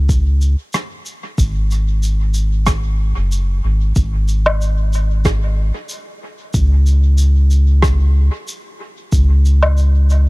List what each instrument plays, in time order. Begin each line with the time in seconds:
Already playing: sub bass C#2
0.09 kick, shaker
0.41 shaker
0.73 cross-stick, shaker
1.06 shaker
1.38 sub bass G#1, kick, shaker
1.71 shaker
2.03 shaker
2.34 shaker
2.66 kick, cross-stick, shaker
3.17 sub bass F#1
3.32 shaker
3.64 sub bass G#1
3.96 sub bass G#1, kick, shaker
4.28 shaker
4.46 low woodblock
4.61 shaker
4.93 shaker
5.25 kick, cross-stick, shaker
5.89 shaker
6.54 sub bass C#2, kick, shaker
6.86 shaker
7.18 shaker
7.51 shaker
7.82 kick, cross-stick, shaker
8.48 shaker
9.12 sub bass C#2, kick, shaker
9.45 shaker
9.63 low woodblock
9.77 shaker
10.10 shaker